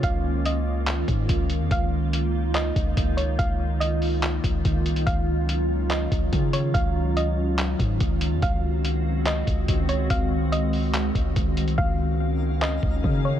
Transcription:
Already playing: D#3 A#3 C#4 F4
0.03 C#2 F5, kick, closed hi-hat
0.45 D#5, closed hi-hat
0.87 clap, closed hi-hat
1.08 G#2, kick, closed hi-hat
1.29 C#2, kick, closed hi-hat
1.50 closed hi-hat
1.60 F2
1.71 C#2 D#4 F5, kick, closed hi-hat
2.13 closed hi-hat
2.55 D#5, clap, closed hi-hat
2.76 C#2, kick, closed hi-hat
2.97 C#2, kick, closed hi-hat
3.17 C#5, closed hi-hat
3.39 C#2 F5, kick, closed hi-hat
3.80 D#5, closed hi-hat
4.02 open hi-hat
4.23 clap, closed hi-hat
4.44 C#2, kick, closed hi-hat
4.65 C#2, kick, closed hi-hat
4.86 C2, closed hi-hat
4.96 closed hi-hat
5.06 C#2 F#3 C#4 F5, kick, closed hi-hat
5.49 closed hi-hat
5.91 D#5, clap, closed hi-hat
6.11 C#2, kick, closed hi-hat
6.33 C#3, kick, closed hi-hat
6.53 C#5, closed hi-hat
6.74 C#2 F5, kick, closed hi-hat
7.17 D#5, closed hi-hat
7.58 clap, closed hi-hat
7.79 G#2, kick, closed hi-hat
8.00 C#2, kick, closed hi-hat
8.21 closed hi-hat
8.32 F2
8.42 C#2 D#3 G#3 C4 F#4 F5, kick, closed hi-hat
8.85 closed hi-hat
9.26 D#5, clap, closed hi-hat
9.47 C#2, kick, closed hi-hat
9.68 C#2, kick, closed hi-hat
9.89 C#5, closed hi-hat
10.10 C#2 F5, kick, closed hi-hat
10.52 D#5, closed hi-hat
10.73 open hi-hat
10.94 clap, closed hi-hat
11.15 C#2, kick, closed hi-hat
11.36 C#2, kick, closed hi-hat
11.57 C2, closed hi-hat
11.68 closed hi-hat
11.78 C#2 D#3 A#3 C#4 D#4 A#4 F5, kick
12.62 D#5, clap
12.83 C#2, kick
13.04 C#3, kick
13.25 C#5

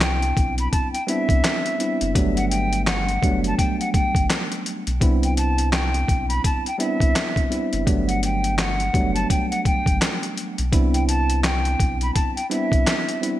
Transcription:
Already playing: C2 G3 B3 C4 D4 E4
0.01 G5, snare, clap, closed hi-hat
0.22 closed hi-hat
0.37 B1, kick, closed hi-hat
0.58 B5, closed hi-hat
0.72 A5, kick, closed hi-hat
0.93 G5, closed hi-hat
1.07 G3 B3 C4 D4 E4 E5, closed hi-hat
1.29 C2, kick, closed hi-hat
1.44 snare, clap, closed hi-hat
1.66 closed hi-hat
1.78 G3 B3 C4 D4 E4, closed hi-hat
2.01 F#1, closed hi-hat
2.15 G1 F#3 G3 A3 B3 D4, kick, closed hi-hat
2.37 F#5, closed hi-hat
2.49 G5, closed hi-hat
2.73 closed hi-hat
2.86 F#5, snare, clap, closed hi-hat
3.09 closed hi-hat
3.22 F#1 F#3 G3 A3 B3 D4, kick, closed hi-hat
3.44 A5, closed hi-hat
3.58 G5, kick, closed hi-hat
3.80 F#5, closed hi-hat
3.93 G5, kick, closed hi-hat
4.15 G1, kick, closed hi-hat
4.30 snare, clap, closed hi-hat
4.52 closed hi-hat
4.66 closed hi-hat
4.87 B1, closed hi-hat
5.00 C2 G3 B3 C4 D4 E4, kick, closed hi-hat
5.23 G5, closed hi-hat
5.37 A5, closed hi-hat
5.58 closed hi-hat
5.73 G5, snare, clap, closed hi-hat
5.94 closed hi-hat
6.08 B1, kick, closed hi-hat
6.29 B5, closed hi-hat
6.44 A5, kick, closed hi-hat
6.66 G5, closed hi-hat
6.78 G3 B3 C4 D4 E4 E5, closed hi-hat
7.00 C2, kick, closed hi-hat
7.16 snare, clap, closed hi-hat
7.36 kick, closed hi-hat
7.50 G3 B3 C4 D4 E4, closed hi-hat
7.73 F#1, closed hi-hat
7.86 G1 F#3 G3 A3 B3 D4, kick, closed hi-hat
8.08 F#5, closed hi-hat
8.23 G5, closed hi-hat
8.44 closed hi-hat
8.58 F#5, snare, clap, closed hi-hat
8.80 closed hi-hat
8.93 F#1 F#3 G3 A3 B3 D4, kick, closed hi-hat
9.15 A5, closed hi-hat
9.30 G5, kick, closed hi-hat
9.50 F#5, closed hi-hat
9.65 G5, kick, closed hi-hat
9.86 G1, kick, closed hi-hat
10.02 snare, clap, closed hi-hat
10.23 closed hi-hat
10.37 closed hi-hat
10.58 B1, closed hi-hat
10.72 C2 G3 B3 C4 D4 E4, kick, closed hi-hat
10.94 G5, closed hi-hat
11.08 A5, closed hi-hat
11.30 closed hi-hat
11.44 G5, snare, clap, closed hi-hat
11.65 closed hi-hat
11.80 B1, kick, closed hi-hat
12.01 B5, closed hi-hat
12.15 A5, kick, closed hi-hat
12.35 G5, closed hi-hat
12.49 G3 B3 C4 D4 E4 E5, closed hi-hat
12.72 C2, kick, closed hi-hat
12.87 snare, clap, closed hi-hat
13.09 closed hi-hat
13.21 G3 B3 C4 D4 E4, closed hi-hat

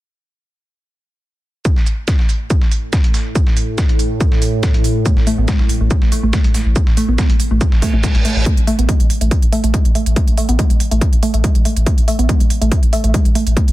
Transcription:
1.65 A2, kick, shaker
1.76 snare
1.86 open hi-hat, shaker
2.08 kick, snare, shaker
2.19 snare
2.29 open hi-hat, shaker
2.50 kick, shaker
2.62 snare
2.72 open hi-hat, shaker
2.93 kick, snare, shaker
3.04 closed hi-hat
3.14 snare, open hi-hat, shaker
3.35 kick, shaker
3.47 snare
3.57 open hi-hat, shaker
3.78 kick, snare, shaker
3.89 closed hi-hat
3.99 open hi-hat, shaker
4.21 kick, shaker
4.32 snare
4.42 open hi-hat, shaker
4.63 kick, snare, shaker
4.74 closed hi-hat
4.84 open hi-hat, shaker
5.06 A3, kick, shaker
5.17 A1, snare
5.27 A3, open hi-hat, shaker
5.38 A1 B3
5.48 G#3, kick, snare, shaker
5.59 A1, snare
5.69 open hi-hat, shaker
5.81 A1 A3
5.91 kick, shaker
6.02 A1, snare
6.12 A3, open hi-hat, shaker
6.23 A1 A3
6.33 G#3, kick, snare, shaker
6.44 A1, closed hi-hat
6.54 A3, snare, open hi-hat, shaker
6.66 A1
6.76 A3, kick, shaker
6.87 A1, snare
6.97 A3, open hi-hat, shaker
7.08 A1 B3
7.18 G#3, kick, snare, shaker
7.30 A1, closed hi-hat
7.40 open hi-hat, shaker
7.51 A1 A3
7.61 kick, reverse cymbal, shaker
7.72 A1, snare
7.82 A3, kick, open hi-hat, shaker
7.93 A1 A3
8.04 G#3, kick, snare, shaker
8.15 A1, closed hi-hat
8.25 A3, open hi-hat, shaker
8.36 A1
8.46 A3, kick, closed hi-hat
8.57 A1, closed hi-hat
8.67 A3, open hi-hat
8.79 A1 B3, closed hi-hat
8.89 G#3, kick, closed hi-hat
9.00 A1, closed hi-hat
9.10 open hi-hat
9.21 A1 A3, closed hi-hat
9.31 kick, closed hi-hat
9.42 A1, closed hi-hat
9.52 A3, open hi-hat
9.64 A1 A3, closed hi-hat
9.74 G#3, kick, closed hi-hat
9.85 A1, closed hi-hat
9.95 A3, open hi-hat
10.06 A1, closed hi-hat
10.16 A3, kick, closed hi-hat
10.28 A1, closed hi-hat
10.38 A3, open hi-hat
10.49 A1 B3, closed hi-hat
10.59 G#3, kick, closed hi-hat
10.70 A1, closed hi-hat
10.80 open hi-hat
10.91 A1 A3, closed hi-hat
11.01 kick, closed hi-hat
11.13 A1, closed hi-hat
11.23 A3, open hi-hat
11.34 A1 A3, closed hi-hat
11.44 G#3, kick, closed hi-hat
11.55 A1, closed hi-hat
11.65 A3, open hi-hat
11.76 A1, closed hi-hat
11.86 A3, kick, closed hi-hat
11.98 A1, closed hi-hat
12.08 A3, open hi-hat
12.19 A1 B3, closed hi-hat
12.29 G#3, kick, closed hi-hat
12.40 A1, closed hi-hat
12.50 open hi-hat
12.61 A1 A3, closed hi-hat
12.72 kick, closed hi-hat
12.83 A1, closed hi-hat
12.93 A3, open hi-hat
13.04 A1 A3, closed hi-hat
13.14 G#3, kick, closed hi-hat
13.25 A1, closed hi-hat
13.35 A3, open hi-hat
13.47 A1, closed hi-hat
13.57 A3, kick, closed hi-hat
13.68 A1, closed hi-hat

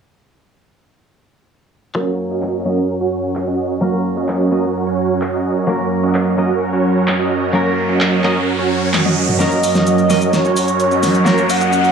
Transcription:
1.95 F#2 F#3 A#3 C#4 F#4 A#4
2.31 C#4 F#4 D#5
2.42 clap
2.65 F#3 A#3 C#4 F#4 A#4 D#5
3.01 C#4 F#4 C#5
3.35 clap
3.47 C#4 F#4 D#5
3.81 F#3 A#3 C#4 F#4 A#4
4.17 C#4 F#4 D#5
4.28 clap
4.51 F#3 A#3 C#4 F#4 A#4 D#5
4.87 C#4 F#4 C#5
5.21 clap
5.33 C#4 F#4 D#5
5.67 F#3 A#3 C#4 F#4 A#4, riser
6.03 C#4 F#4 D#5
6.14 clap
6.37 F#3 A#3 C#4 F#4 A#4 D#5
6.73 C#4 F#4 C#5
7.07 clap
7.19 C#4 F#4 D#5
7.53 F#3 A#3 C#4 F#4 A#4
7.89 C#4 F#4 D#5
8.01 clap
8.23 F#3 A#3 C#4 F#4 A#4 D#5, clap
8.59 C#4 F#4 C#5
8.93 clap, high tom
9.05 C#4 F#4 D#5, high tom
9.29 mid tom
9.39 F#2 F#3 A#3 C#4 F#4 A#4 D#5, snare, closed hi-hat, riser, shaker
9.52 closed hi-hat, shaker
9.63 open hi-hat, shaker
9.75 C#4 F#4 D#5, snare, closed hi-hat, shaker
9.87 closed hi-hat, shaker
9.98 closed hi-hat, shaker
10.09 F#3 A#3 C#4 F#4 A#4 D#5, snare, open hi-hat, shaker
10.22 closed hi-hat, shaker
10.33 C#5, snare, closed hi-hat, shaker
10.45 C#4 F#4 C#5, closed hi-hat, shaker
10.56 open hi-hat, shaker
10.68 closed hi-hat, shaker
10.80 closed hi-hat, shaker
10.91 C#4 F#4 D#5, closed hi-hat, shaker
11.03 snare, open hi-hat, shaker
11.15 closed hi-hat, shaker
11.25 F#3 A#3 C#4 F#4 A#4 C#5, snare, closed hi-hat, shaker
11.38 closed hi-hat, shaker
11.49 F#5, open hi-hat, shaker
11.61 C#4 F#4 D#5, closed hi-hat, shaker
11.73 closed hi-hat, shaker
11.84 closed hi-hat, shaker

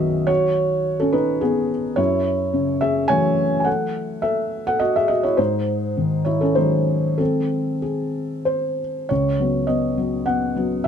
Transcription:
Already playing: B1 F#2 D#3 F#3 B3 F#4 G#4 C#5 D#5 E5
0.27 F#4 C#5
1.00 C#4 A4
1.13 D#4 B4
1.41 B3 G#4
1.96 F#2 E4 C#5
2.54 C#3
2.81 G#4 E5
3.08 E3 F#3 A3 C#5 G#5
3.60 G#5
3.64 A4 F#5
4.22 A4 E5
4.67 A4 F#5
4.80 F#4 D#5
4.96 G#4 E5
5.08 F#4 D#5
5.23 E4 C#5
5.37 G#2 D#4 C5
5.97 D#3
6.25 E4 C#5
6.41 C#4 A4
6.55 D#3 F#3 G#3 D#4 C5
7.18 C4 A4
7.82 C4 G#4
8.45 C5
9.09 C#2 C#5
9.40 F#3 B3
9.67 B3 D#5
9.98 F#3 B3
10.26 B3 F#5
10.56 F#3 B3
10.84 E5

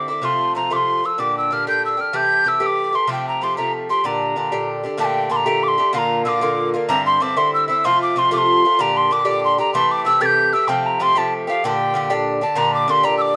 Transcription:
0.08 D3 C4 E4 D6
0.22 C3 F3 A3 F4 C6
0.55 C3 F3 A3 F4 A#5
0.70 C3 F3 A3 F4 D6
0.76 C6
1.04 F3 A3 F4 E6
1.18 A#2 D3 D4 G4 D6
1.38 E6
1.51 A#2 D3 D4 G4 F6
1.67 A#2 D3 D4 G4 G6
1.85 E6
1.97 D3 D4 G4 F6
2.13 C3 E3 A3 G4 G6
2.44 C3 E3 A3 G4 E6
2.60 C3 E3 A3 G4 E6
2.66 D6
2.93 E3 A3 G4 C6
3.07 C3 F3 A3 G4
3.12 G5
3.28 A#5
3.41 C3 F3 A3 G4 C6
3.57 C3 F3 A3 G4 A#5
3.89 F3 A3 G4 C6
4.04 A#2 D3 D4 G4 A#5
4.36 A#2 D3 D4 G4
4.52 A#2 D3 D4 G4
4.83 D3 D4 G4
4.98 A#2 D3 A3 G4 A5
5.05 G5
5.30 A#2 D3 A3 G4 C6
5.36 A#5
5.46 A#2 D3 A3 G4
5.63 D6
5.68 C6
5.78 D3 A3 G4
5.93 A#2 D3 A#3 F4 C6
5.98 A#5
6.25 A#2 D3 A#3 F4 D6 E6
6.41 A#2 D3 A#3 F4
6.74 D3 A#3 F4
6.89 G2 D3 C4 E4 A#5
7.06 C6
7.20 G2 D3 C4 E4 D6
7.37 G2 D3 C4 E4 C6
7.54 E6
7.68 D3 C4 E4 E6
7.84 C3 F3 A3 F4 C6
8.02 D6
8.16 C3 F3 A3 F4 C6
8.31 C3 F3 A3 F4 D6
8.38 C6
8.65 F3 A3 F4
8.79 A#2 D3 D4 G4 A#5
8.97 C6
9.11 A#2 D3 D4 G4 D6
9.25 A#2 D3 D4 G4 D6
9.44 C6
9.58 D3 D4 G4 A#5
9.74 C3 E3 A3 G4 C6
9.91 D6
10.05 C3 E3 A3 G4 E6
10.21 C3 E3 A3 G4 A6
10.26 G6
10.53 E3 A3 G4 E6
10.68 C3 F3 A3 G4 G5
10.86 A#5
11.00 C3 F3 A3 G4 C6
11.15 C3 F3 A3 G4 A5
11.47 F3 A3 G4 F5
11.64 A#2 D3 D4 G4 G5
11.94 A#2 D3 D4 G4
12.10 A#2 D3 D4 G4
12.41 D3 D4 G4 A5
12.55 A#2 D3 D4 G4 A#5
12.74 D6
12.88 A#2 D3 D4 G4 C6
13.03 A#2 D3 D4 G4 A#5
13.18 D6 E6

